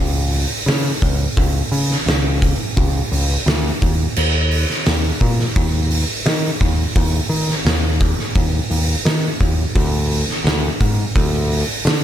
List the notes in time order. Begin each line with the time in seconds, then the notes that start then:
Already playing: C#2
0.33 open hi-hat
0.66 C#3, snare, open hi-hat
1.02 C#2, kick, open hi-hat
1.37 C#2, kick, open hi-hat
1.72 C#3, open hi-hat
1.91 snare
2.06 C#2, snare, open hi-hat
2.42 kick, open hi-hat
2.77 C#2, kick, open hi-hat
3.12 C#2, open hi-hat
3.46 D2, snare, open hi-hat
3.82 D#2, kick, open hi-hat
4.16 D#2, crash
4.51 open hi-hat
4.70 snare
4.86 D#2, snare, open hi-hat
5.20 A#2, kick, open hi-hat
5.40 snare
5.56 D#2, kick, open hi-hat
5.91 open hi-hat
6.26 D#3, snare, open hi-hat
6.61 D#2, kick, open hi-hat
6.95 D#2, kick, open hi-hat
7.29 D#3, open hi-hat
7.49 snare
7.65 D#2, snare, open hi-hat
8.01 kick, open hi-hat
8.19 snare
8.35 D#2, kick, open hi-hat
8.70 D#2, open hi-hat
9.05 D#3, snare, open hi-hat
9.40 D#2, kick, open hi-hat
9.75 D2, kick, open hi-hat
10.11 open hi-hat
10.29 snare
10.44 D2, snare, open hi-hat
10.80 G#2, kick, open hi-hat
11.16 D2, kick, open hi-hat
11.52 open hi-hat
11.85 D3, snare, open hi-hat